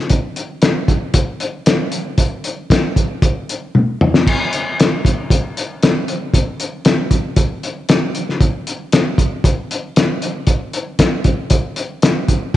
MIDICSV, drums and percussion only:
0, 0, Header, 1, 2, 480
1, 0, Start_track
1, 0, Tempo, 517688
1, 101, Time_signature, 4, 2, 24, 8
1, 11653, End_track
2, 0, Start_track
2, 0, Title_t, "Drums"
2, 89, Note_on_c, 9, 42, 75
2, 96, Note_on_c, 9, 36, 80
2, 181, Note_off_c, 9, 42, 0
2, 189, Note_off_c, 9, 36, 0
2, 335, Note_on_c, 9, 42, 65
2, 428, Note_off_c, 9, 42, 0
2, 572, Note_on_c, 9, 42, 97
2, 580, Note_on_c, 9, 38, 102
2, 665, Note_off_c, 9, 42, 0
2, 673, Note_off_c, 9, 38, 0
2, 818, Note_on_c, 9, 36, 85
2, 820, Note_on_c, 9, 42, 71
2, 910, Note_off_c, 9, 36, 0
2, 912, Note_off_c, 9, 42, 0
2, 1055, Note_on_c, 9, 42, 101
2, 1057, Note_on_c, 9, 36, 101
2, 1147, Note_off_c, 9, 42, 0
2, 1150, Note_off_c, 9, 36, 0
2, 1299, Note_on_c, 9, 42, 76
2, 1392, Note_off_c, 9, 42, 0
2, 1540, Note_on_c, 9, 42, 97
2, 1548, Note_on_c, 9, 38, 112
2, 1633, Note_off_c, 9, 42, 0
2, 1641, Note_off_c, 9, 38, 0
2, 1777, Note_on_c, 9, 42, 67
2, 1870, Note_off_c, 9, 42, 0
2, 2018, Note_on_c, 9, 42, 73
2, 2020, Note_on_c, 9, 36, 81
2, 2111, Note_off_c, 9, 42, 0
2, 2113, Note_off_c, 9, 36, 0
2, 2263, Note_on_c, 9, 42, 63
2, 2355, Note_off_c, 9, 42, 0
2, 2505, Note_on_c, 9, 36, 81
2, 2512, Note_on_c, 9, 42, 85
2, 2520, Note_on_c, 9, 38, 107
2, 2598, Note_off_c, 9, 36, 0
2, 2605, Note_off_c, 9, 42, 0
2, 2613, Note_off_c, 9, 38, 0
2, 2747, Note_on_c, 9, 36, 79
2, 2752, Note_on_c, 9, 42, 64
2, 2840, Note_off_c, 9, 36, 0
2, 2845, Note_off_c, 9, 42, 0
2, 2988, Note_on_c, 9, 36, 111
2, 2988, Note_on_c, 9, 42, 88
2, 3080, Note_off_c, 9, 36, 0
2, 3081, Note_off_c, 9, 42, 0
2, 3240, Note_on_c, 9, 42, 69
2, 3332, Note_off_c, 9, 42, 0
2, 3476, Note_on_c, 9, 48, 61
2, 3569, Note_off_c, 9, 48, 0
2, 3719, Note_on_c, 9, 45, 92
2, 3812, Note_off_c, 9, 45, 0
2, 3841, Note_on_c, 9, 38, 84
2, 3933, Note_off_c, 9, 38, 0
2, 3956, Note_on_c, 9, 36, 84
2, 3961, Note_on_c, 9, 49, 81
2, 4049, Note_off_c, 9, 36, 0
2, 4054, Note_off_c, 9, 49, 0
2, 4198, Note_on_c, 9, 42, 65
2, 4291, Note_off_c, 9, 42, 0
2, 4447, Note_on_c, 9, 42, 90
2, 4456, Note_on_c, 9, 38, 103
2, 4540, Note_off_c, 9, 42, 0
2, 4548, Note_off_c, 9, 38, 0
2, 4680, Note_on_c, 9, 36, 81
2, 4691, Note_on_c, 9, 42, 72
2, 4773, Note_off_c, 9, 36, 0
2, 4784, Note_off_c, 9, 42, 0
2, 4918, Note_on_c, 9, 36, 113
2, 4924, Note_on_c, 9, 42, 102
2, 5011, Note_off_c, 9, 36, 0
2, 5017, Note_off_c, 9, 42, 0
2, 5166, Note_on_c, 9, 42, 79
2, 5259, Note_off_c, 9, 42, 0
2, 5401, Note_on_c, 9, 42, 93
2, 5410, Note_on_c, 9, 38, 109
2, 5494, Note_off_c, 9, 42, 0
2, 5503, Note_off_c, 9, 38, 0
2, 5639, Note_on_c, 9, 42, 73
2, 5732, Note_off_c, 9, 42, 0
2, 5875, Note_on_c, 9, 36, 91
2, 5881, Note_on_c, 9, 42, 78
2, 5968, Note_off_c, 9, 36, 0
2, 5973, Note_off_c, 9, 42, 0
2, 6117, Note_on_c, 9, 42, 68
2, 6210, Note_off_c, 9, 42, 0
2, 6350, Note_on_c, 9, 42, 91
2, 6359, Note_on_c, 9, 38, 108
2, 6443, Note_off_c, 9, 42, 0
2, 6451, Note_off_c, 9, 38, 0
2, 6590, Note_on_c, 9, 36, 76
2, 6591, Note_on_c, 9, 42, 65
2, 6683, Note_off_c, 9, 36, 0
2, 6683, Note_off_c, 9, 42, 0
2, 6828, Note_on_c, 9, 42, 88
2, 6830, Note_on_c, 9, 36, 112
2, 6921, Note_off_c, 9, 42, 0
2, 6923, Note_off_c, 9, 36, 0
2, 7078, Note_on_c, 9, 42, 70
2, 7170, Note_off_c, 9, 42, 0
2, 7313, Note_on_c, 9, 42, 96
2, 7321, Note_on_c, 9, 38, 107
2, 7406, Note_off_c, 9, 42, 0
2, 7414, Note_off_c, 9, 38, 0
2, 7554, Note_on_c, 9, 42, 69
2, 7647, Note_off_c, 9, 42, 0
2, 7688, Note_on_c, 9, 38, 29
2, 7781, Note_off_c, 9, 38, 0
2, 7794, Note_on_c, 9, 36, 92
2, 7795, Note_on_c, 9, 42, 68
2, 7886, Note_off_c, 9, 36, 0
2, 7888, Note_off_c, 9, 42, 0
2, 8038, Note_on_c, 9, 42, 64
2, 8131, Note_off_c, 9, 42, 0
2, 8275, Note_on_c, 9, 42, 93
2, 8283, Note_on_c, 9, 38, 95
2, 8367, Note_off_c, 9, 42, 0
2, 8376, Note_off_c, 9, 38, 0
2, 8513, Note_on_c, 9, 36, 91
2, 8518, Note_on_c, 9, 42, 69
2, 8605, Note_off_c, 9, 36, 0
2, 8611, Note_off_c, 9, 42, 0
2, 8754, Note_on_c, 9, 36, 110
2, 8759, Note_on_c, 9, 42, 99
2, 8846, Note_off_c, 9, 36, 0
2, 8852, Note_off_c, 9, 42, 0
2, 9002, Note_on_c, 9, 42, 75
2, 9095, Note_off_c, 9, 42, 0
2, 9237, Note_on_c, 9, 42, 86
2, 9245, Note_on_c, 9, 38, 102
2, 9330, Note_off_c, 9, 42, 0
2, 9338, Note_off_c, 9, 38, 0
2, 9476, Note_on_c, 9, 42, 75
2, 9568, Note_off_c, 9, 42, 0
2, 9705, Note_on_c, 9, 42, 84
2, 9709, Note_on_c, 9, 36, 93
2, 9797, Note_off_c, 9, 42, 0
2, 9802, Note_off_c, 9, 36, 0
2, 9952, Note_on_c, 9, 42, 73
2, 10045, Note_off_c, 9, 42, 0
2, 10189, Note_on_c, 9, 42, 102
2, 10190, Note_on_c, 9, 36, 75
2, 10197, Note_on_c, 9, 38, 102
2, 10281, Note_off_c, 9, 42, 0
2, 10283, Note_off_c, 9, 36, 0
2, 10290, Note_off_c, 9, 38, 0
2, 10425, Note_on_c, 9, 42, 75
2, 10429, Note_on_c, 9, 36, 88
2, 10517, Note_off_c, 9, 42, 0
2, 10522, Note_off_c, 9, 36, 0
2, 10662, Note_on_c, 9, 42, 99
2, 10669, Note_on_c, 9, 36, 107
2, 10755, Note_off_c, 9, 42, 0
2, 10762, Note_off_c, 9, 36, 0
2, 10906, Note_on_c, 9, 42, 72
2, 10999, Note_off_c, 9, 42, 0
2, 11148, Note_on_c, 9, 42, 90
2, 11156, Note_on_c, 9, 38, 101
2, 11241, Note_off_c, 9, 42, 0
2, 11249, Note_off_c, 9, 38, 0
2, 11390, Note_on_c, 9, 42, 65
2, 11391, Note_on_c, 9, 36, 77
2, 11483, Note_off_c, 9, 36, 0
2, 11483, Note_off_c, 9, 42, 0
2, 11653, End_track
0, 0, End_of_file